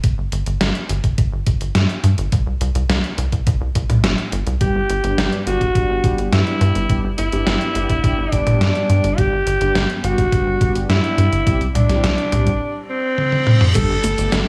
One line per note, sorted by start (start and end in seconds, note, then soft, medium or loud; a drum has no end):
0.04 0.15 G1 loud
0.04 kick loud
0.04 closed hi-hat medium
0.18 0.29 G1 medium
0.32 0.43 G1 medium
0.32 closed hi-hat medium
0.46 0.58 G1 medium
0.46 closed hi-hat medium
0.61 0.72 G1 loud
0.61 snare loud
0.61 closed hi-hat medium
0.75 closed hi-hat soft
0.89 1.01 G1 medium
0.89 closed hi-hat medium
1.04 1.15 G1 medium
1.04 kick medium
1.04 closed hi-hat soft
1.18 1.29 G1 loud
1.18 kick loud
1.18 closed hi-hat medium
1.32 1.44 G1 medium
1.46 1.58 G1 loud
1.46 kick loud
1.46 closed hi-hat medium
1.61 1.72 G1 medium
1.61 closed hi-hat medium
1.75 1.86 G2 loud
1.75 snare loud
1.75 closed hi-hat medium
1.89 closed hi-hat soft
2.04 2.15 G2 medium
2.04 closed hi-hat medium
2.18 2.29 G1 medium
2.18 closed hi-hat medium
2.32 2.43 C2 loud
2.32 kick loud
2.32 closed hi-hat medium
2.47 2.58 C2 medium
2.61 2.72 C2 medium
2.61 closed hi-hat medium
2.75 2.86 C2 medium
2.75 closed hi-hat soft
2.89 3.01 C2 loud
2.89 snare loud
2.89 closed hi-hat medium
3.04 closed hi-hat soft
3.18 3.29 C2 medium
3.18 closed hi-hat medium
3.32 3.44 C2 medium
3.32 kick medium
3.32 closed hi-hat soft
3.47 3.58 C2 loud
3.47 kick loud
3.47 closed hi-hat medium
3.61 3.72 C2 medium
3.75 3.86 C2 medium
3.75 kick medium
3.75 closed hi-hat medium
3.90 4.01 C2 medium
3.90 closed hi-hat soft
3.90 mid tom medium
4.04 4.15 G1 loud
4.04 snare loud
4.04 closed hi-hat medium
4.18 closed hi-hat soft
4.32 4.43 G1 loud
4.32 closed hi-hat medium
4.47 4.58 C2 medium
4.47 closed hi-hat soft
4.61 4.72 G1 loud
4.61 4.80 G2 medium
4.61 4.80 G3 medium
4.61 4.80 B3 medium
4.61 4.80 D4 medium
4.61 5.35 G4 loud
4.61 4.80 G4 loud
4.61 kick loud
4.61 closed hi-hat medium
4.75 4.86 G1 medium
4.90 5.01 G1 medium
4.90 closed hi-hat medium
5.04 5.15 G1 medium
5.04 5.43 G2 medium
5.04 5.43 G3 medium
5.04 5.43 B3 medium
5.04 5.43 D4 medium
5.04 5.43 G4 loud
5.04 closed hi-hat soft
5.18 5.29 G1 loud
5.18 snare loud
5.18 closed hi-hat medium
5.33 closed hi-hat soft
5.47 5.58 G1 medium
5.47 5.66 G2 loud
5.47 5.66 G3 medium
5.47 5.66 B3 medium
5.47 5.66 D4 medium
5.47 6.21 F#4 loud
5.47 5.66 G4 loud
5.47 closed hi-hat medium
5.61 5.72 G1 medium
5.61 kick medium
5.61 closed hi-hat soft
5.75 5.86 G1 loud
5.75 6.00 G2 medium
5.75 6.00 G3 medium
5.75 6.00 B3 medium
5.75 6.00 D4 medium
5.75 6.00 G4 medium
5.75 kick loud
5.75 closed hi-hat medium
5.89 6.01 G1 medium
6.04 6.15 G1 loud
6.04 6.43 G2 medium
6.04 6.43 G3 medium
6.04 6.43 B3 medium
6.04 6.43 D4 medium
6.04 6.43 G4 loud
6.04 kick loud
6.04 closed hi-hat medium
6.18 6.29 G1 medium
6.18 closed hi-hat soft
6.32 6.43 G2 loud
6.32 7.07 E4 medium
6.32 snare loud
6.32 closed hi-hat medium
6.47 6.86 G2 medium
6.47 6.86 G3 medium
6.47 6.86 B3 medium
6.47 6.86 D4 medium
6.47 6.86 G4 medium
6.47 closed hi-hat soft
6.61 6.72 G2 loud
6.61 closed hi-hat medium
6.75 6.86 G1 medium
6.75 closed hi-hat soft
6.89 7.01 G1 loud
6.89 7.09 G2 medium
6.89 7.09 G3 medium
6.89 7.09 B3 medium
6.89 7.09 D4 medium
6.89 7.09 G4 loud
6.89 kick loud
6.89 closed hi-hat medium
7.04 7.15 G1 medium
7.18 7.29 G1 medium
7.18 8.34 E4 medium
7.18 closed hi-hat medium
7.32 7.44 G1 medium
7.32 7.72 G2 medium
7.32 7.72 G3 medium
7.32 7.72 B3 medium
7.32 7.72 D4 medium
7.32 7.72 G4 loud
7.32 closed hi-hat soft
7.47 7.58 G1 loud
7.47 snare loud
7.47 closed hi-hat medium
7.61 closed hi-hat soft
7.75 7.86 G1 medium
7.75 7.94 G2 medium
7.75 7.95 G3 medium
7.75 7.94 B3 medium
7.75 7.94 D4 medium
7.75 7.94 G4 loud
7.75 closed hi-hat medium
7.90 8.01 G1 medium
7.90 kick medium
7.90 closed hi-hat soft
8.04 8.15 G1 loud
8.04 8.29 G2 medium
8.04 8.29 G3 medium
8.04 8.29 B3 medium
8.04 8.29 D4 medium
8.04 8.29 G4 medium
8.04 kick loud
8.04 closed hi-hat medium
8.18 8.29 G1 medium
8.32 8.43 G1 loud
8.32 8.72 G2 medium
8.32 8.72 G3 medium
8.32 8.72 B3 medium
8.32 9.20 D4 medium
8.32 8.72 D4 medium
8.32 8.72 G4 loud
8.32 kick medium
8.32 closed hi-hat medium
8.47 8.58 G1 medium
8.47 closed hi-hat soft
8.47 mid tom medium
8.61 8.72 G2 loud
8.61 snare loud
8.61 closed hi-hat medium
8.75 9.15 G2 medium
8.75 9.15 G3 medium
8.75 9.15 B3 medium
8.75 9.15 D4 medium
8.75 9.15 G4 medium
8.75 closed hi-hat soft
8.89 9.01 G2 medium
8.89 closed hi-hat medium
9.04 9.15 G1 medium
9.04 closed hi-hat soft
9.18 9.29 G1 loud
9.18 9.37 G2 medium
9.18 9.37 G3 medium
9.18 9.37 B3 medium
9.18 9.37 D4 medium
9.18 9.92 G4 loud
9.18 9.37 G4 medium
9.18 kick loud
9.18 closed hi-hat medium
9.32 9.43 G1 medium
9.46 9.58 G1 medium
9.46 closed hi-hat medium
9.61 9.72 G1 medium
9.61 10.00 G2 medium
9.61 10.00 G3 medium
9.61 10.00 B3 medium
9.61 10.00 D4 medium
9.61 10.00 G4 loud
9.61 closed hi-hat soft
9.75 9.86 G1 loud
9.75 snare loud
9.75 closed hi-hat medium
9.90 closed hi-hat soft
10.04 10.15 G1 medium
10.04 10.23 G2 medium
10.04 10.23 G3 medium
10.04 10.23 B3 medium
10.04 10.23 D4 medium
10.04 10.78 F#4 loud
10.04 10.23 G4 loud
10.04 closed hi-hat medium
10.18 10.29 G1 medium
10.18 kick medium
10.18 closed hi-hat soft
10.32 10.43 G1 loud
10.32 10.58 G2 medium
10.32 10.58 G3 medium
10.32 10.58 B3 medium
10.32 10.58 D4 medium
10.32 10.58 G4 medium
10.32 kick loud
10.32 closed hi-hat medium
10.46 10.58 G1 medium
10.61 10.72 G1 loud
10.61 11.00 G2 medium
10.61 11.00 G3 medium
10.61 11.00 B3 medium
10.61 11.00 D4 medium
10.61 11.00 G4 loud
10.61 kick loud
10.61 closed hi-hat medium
10.75 10.86 G1 medium
10.75 closed hi-hat medium
10.89 11.00 G2 loud
10.89 11.64 E4 loud
10.89 snare loud
10.89 closed hi-hat medium
11.04 11.43 G2 medium
11.04 11.43 G3 medium
11.04 11.43 B3 medium
11.04 11.43 D4 medium
11.04 11.43 G4 medium
11.04 closed hi-hat soft
11.18 11.29 G2 medium
11.18 closed hi-hat medium
11.32 11.43 G1 medium
11.32 closed hi-hat soft
11.47 11.58 C2 loud
11.47 11.66 C3 medium
11.47 11.66 G3 medium
11.47 11.66 C4 medium
11.47 11.66 E4 medium
11.47 11.66 G4 medium
11.47 kick loud
11.47 closed hi-hat medium
11.61 11.72 C2 medium
11.61 closed hi-hat soft
11.75 11.86 C2 medium
11.75 12.78 D4 loud
11.75 closed hi-hat medium
11.75 mid tom medium
11.89 12.01 C2 medium
11.89 12.29 C3 medium
11.89 12.29 G3 medium
11.89 12.29 C4 medium
11.89 12.29 E4 medium
11.89 12.29 G4 loud
11.89 snare soft
11.89 closed hi-hat medium
12.04 12.15 C2 loud
12.04 snare loud
12.04 closed hi-hat medium
12.18 closed hi-hat soft
12.32 12.43 C2 medium
12.32 12.52 C3 loud
12.32 12.52 G3 medium
12.32 12.52 C4 medium
12.32 12.52 E4 medium
12.32 12.52 G4 loud
12.32 closed hi-hat medium
12.32 mid tom medium
12.47 12.58 C2 medium
12.47 kick medium
12.47 closed hi-hat medium
12.61 reverse cymbal medium
12.89 13.64 C4 loud
13.18 high tom medium
13.32 high tom medium
13.47 mid tom medium
13.61 mid tom medium
13.75 13.86 G1 loud
13.75 13.94 G2 medium
13.75 14.48 G3 medium
13.75 13.91 G3 loud
13.75 13.94 A3 medium
13.75 13.94 B3 medium
13.75 13.94 D4 medium
13.75 13.94 G4 loud
13.75 14.48 A4 loud
13.75 14.48 D5 medium
13.75 14.48 A5 medium
13.75 14.48 B5 medium
13.75 kick loud
13.75 closed hi-hat medium
13.75 crash loud
13.75 cabasa soft
13.90 14.01 G1 medium
14.04 14.15 G1 medium
14.04 14.27 A3 loud
14.04 closed hi-hat medium
14.04 cabasa medium
14.18 14.29 G1 medium
14.18 14.48 G2 loud
14.18 14.48 A3 medium
14.18 14.48 B3 medium
14.18 14.48 D4 medium
14.18 14.48 G4 loud
14.18 closed hi-hat medium
14.18 cabasa soft
14.32 14.44 G1 loud
14.32 14.48 B3 medium
14.32 snare loud
14.32 closed hi-hat medium
14.32 cabasa soft